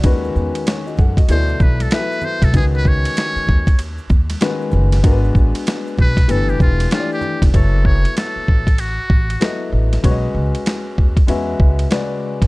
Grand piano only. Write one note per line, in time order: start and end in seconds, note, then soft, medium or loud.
0.00 1.16 D#3 medium
0.00 1.16 G#3 medium
0.00 0.22 D5 medium
0.04 1.17 C#4 medium
0.04 0.67 F#4 medium
0.04 0.67 B4 loud
0.67 0.85 C#5 medium
0.87 0.98 F#4 medium
0.87 0.97 D#5 medium
0.99 1.17 A4 medium
0.99 1.17 F#5 medium
1.18 1.48 F#4 soft
1.18 1.48 D#5 medium
1.29 1.86 B2 medium
1.29 1.37 E3 medium
1.29 1.86 E4 medium
1.29 1.86 A4 medium
1.29 1.87 D5 medium
1.36 1.89 F#3 medium
1.92 2.00 E3 medium
1.92 2.48 B3 medium
1.92 2.49 E4 medium
1.92 2.49 A4 medium
1.92 2.49 E5 medium
1.98 2.51 F#3 medium
2.54 3.66 D#3 medium
2.54 3.67 G#3 medium
2.54 3.67 C#4 medium
2.54 3.67 F#4 medium
2.54 3.67 B4 medium
4.41 4.98 D#3 medium
4.41 4.98 G#3 medium
4.41 4.98 C#4 medium
4.41 4.98 F#4 medium
4.41 4.99 B4 loud
5.03 6.16 G#3 loud
5.03 6.16 B3 medium
5.03 6.16 D4 medium
5.03 6.17 F#4 medium
5.03 5.13 A#4 medium
5.12 6.20 B4 loud
6.28 6.85 E3 medium
6.28 6.85 A3 medium
6.28 6.85 D4 medium
6.28 6.86 G4 medium
6.28 6.86 B4 medium
6.91 7.48 E3 medium
6.91 7.48 A3 medium
6.91 7.48 D4 medium
6.91 7.48 G4 medium
6.91 7.00 C#5 medium
6.99 7.52 D5 medium
7.53 8.66 F#3 medium
7.53 8.66 B3 medium
7.53 8.67 E4 medium
7.53 8.67 A4 medium
7.53 8.67 C#5 medium
9.40 9.97 F#3 medium
9.40 9.97 B3 medium
9.40 9.98 E4 medium
9.40 9.98 A4 medium
9.40 9.98 D#5 medium
10.03 11.16 G#3 medium
10.03 11.16 C#4 medium
10.03 11.16 F#4 medium
10.03 11.17 B4 medium
10.03 10.13 C#5 medium
10.11 11.20 D#5 medium
11.27 11.84 G#3 medium
11.27 11.85 C#4 medium
11.27 11.85 F#4 medium
11.27 11.85 B4 medium
11.27 11.86 E5 medium
11.90 12.47 C#3 medium
11.90 12.47 G#3 medium
11.90 12.47 F#4 medium
11.90 12.47 B4 medium
11.90 12.47 D5 medium